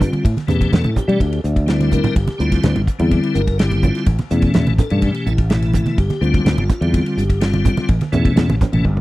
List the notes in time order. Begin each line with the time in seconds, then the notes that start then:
Already playing: D3 G3 C4 F4
0.01 kick, hi-hat pedal, low conga
0.13 ride, high conga
0.25 A2, kick, ride
0.37 snare, ride, high conga
0.47 E2 B2 E3 A3 C#4 G4, hi-hat pedal, high conga, low conga
0.61 kick, ride
0.72 E2 A4, snare, ride, low conga
0.84 A2, ride, high conga
0.96 G4, kick, hi-hat pedal, low conga
1.08 B2 E3 G3 A3 C#4, ride
1.20 D2, kick, ride
1.33 ride
1.44 D2, hi-hat pedal
1.56 kick, ride
1.66 D3 G3 C4 E4, snare, ride
1.80 snare, ride, high conga
1.92 A#4, kick, hi-hat pedal, low conga
2.04 snare, ride, low conga
2.16 G1 G4, kick, ride
2.28 snare, ride, high conga
2.38 D2 D3 G3 C4 E4 F4, hi-hat pedal
2.52 kick, snare, ride
2.63 D2, snare, ride, low conga
2.76 G1, ride, high conga
2.87 kick, hi-hat pedal
2.99 E2 D3 G3 C4 E4, ride
3.11 kick, ride
3.23 ride
3.34 G1 A#4, hi-hat pedal
3.47 kick, ride
3.58 D3 G3 C4 E4 G4, snare, ride
3.71 snare, ride, high conga
3.82 F4, kick, hi-hat pedal, low conga
3.95 snare, ride
4.06 A1, kick, ride
4.18 snare, ride, high conga
4.30 E2 B2 E3 A3 C#4, snare, hi-hat pedal
4.42 kick, ride
4.54 E2, snare, ride, low conga
4.66 A1, snare, ride, high conga
4.78 A4, kick, snare, hi-hat pedal, low conga
4.90 G2 B2 E3 A3 C#4, ride
5.02 G4, kick, ride
5.14 ride
5.26 A1 E4, hi-hat pedal
5.38 kick, ride
5.50 B2 E3 A3 E4, snare, ride
5.62 snare, ride
5.74 kick, hi-hat pedal, low conga
5.86 snare, ride, high conga
5.98 G1 G4, kick, ride
6.10 snare, ride, high conga
6.21 D2 D3 G3 C4 F4, hi-hat pedal
6.34 kick, ride
6.45 D2 F4, snare, ride, low conga
6.57 G1, ride, high conga
6.70 kick, snare, hi-hat pedal, low conga
6.81 E2 D3 G3 C4 F4, ride
6.94 kick, ride
7.06 ride
7.17 G1 G4, hi-hat pedal
7.30 kick, ride
7.41 D3 G3 C4 F4, snare, ride
7.53 ride, high conga
7.65 kick, hi-hat pedal, low conga
7.77 snare, ride, high conga
7.89 A1, kick, ride
8.01 snare, ride, high conga
8.12 E2 B2 E3 A3 C#4, snare, hi-hat pedal, low conga
8.25 kick, ride
8.36 E2, snare, ride, low conga
8.48 A1, snare, ride, high conga
8.61 kick, snare, hi-hat pedal, low conga
8.72 A1 B2 E3 A3 C#4, ride
8.85 G1, kick, high tom
8.97 high tom